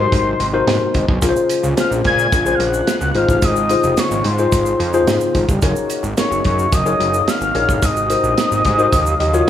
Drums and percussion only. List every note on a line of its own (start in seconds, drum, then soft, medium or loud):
0.12 kick loud
0.12 closed hi-hat medium
0.40 closed hi-hat medium
0.68 snare loud
0.68 closed hi-hat medium
0.94 kick loud
0.94 closed hi-hat medium
1.08 kick loud
1.22 kick loud
1.22 closed hi-hat loud
1.22 shaker medium
1.36 shaker medium
1.50 closed hi-hat medium
1.50 shaker medium
1.64 shaker medium
1.77 snare loud
1.77 closed hi-hat loud
1.77 shaker medium
1.92 shaker medium
2.04 kick medium
2.04 closed hi-hat medium
2.19 shaker soft
2.32 kick loud
2.32 closed hi-hat medium
2.32 shaker medium
2.46 shaker medium
2.60 closed hi-hat medium
2.74 shaker medium
2.87 snare loud
2.87 closed hi-hat medium
2.87 shaker medium
3.01 shaker medium
3.15 closed hi-hat medium
3.29 kick loud
3.29 shaker medium
3.42 kick loud
3.42 closed hi-hat loud
3.42 shaker medium
3.56 shaker medium
3.69 closed hi-hat medium
3.69 shaker medium
3.83 shaker medium
3.97 snare loud
3.97 closed hi-hat loud
3.97 shaker medium
4.11 shaker medium
4.24 closed hi-hat medium
4.38 shaker soft
4.52 kick loud
4.52 closed hi-hat medium
4.52 shaker medium
4.66 shaker medium
4.80 closed hi-hat medium
4.93 shaker medium
5.07 snare loud
5.07 closed hi-hat medium
5.07 shaker medium
5.21 shaker medium
5.35 kick medium
5.35 closed hi-hat medium
5.49 kick loud
5.49 shaker medium
5.62 kick loud
5.62 closed hi-hat loud
5.62 shaker medium
5.76 shaker medium
5.90 closed hi-hat medium
5.90 shaker medium
6.03 shaker medium
6.18 snare loud
6.18 closed hi-hat loud
6.18 shaker medium
6.32 shaker medium
6.44 kick medium
6.44 closed hi-hat medium
6.59 shaker medium
6.72 kick loud
6.72 closed hi-hat medium
6.72 shaker medium
6.86 shaker medium
7.00 closed hi-hat medium
7.14 shaker medium
7.28 snare loud
7.28 closed hi-hat medium
7.28 shaker medium
7.41 shaker medium
7.55 closed hi-hat medium
7.69 kick loud
7.69 shaker medium
7.82 kick loud
7.82 closed hi-hat loud
7.82 shaker medium
7.97 shaker medium
8.10 closed hi-hat medium
8.10 shaker medium
8.24 shaker medium
8.38 snare loud
8.38 closed hi-hat medium
8.38 shaker medium
8.52 shaker medium
8.65 kick loud
8.65 closed hi-hat medium
8.79 shaker soft
8.93 kick loud
8.93 closed hi-hat loud
8.93 shaker medium
9.06 shaker medium
9.20 closed hi-hat medium
9.34 shaker medium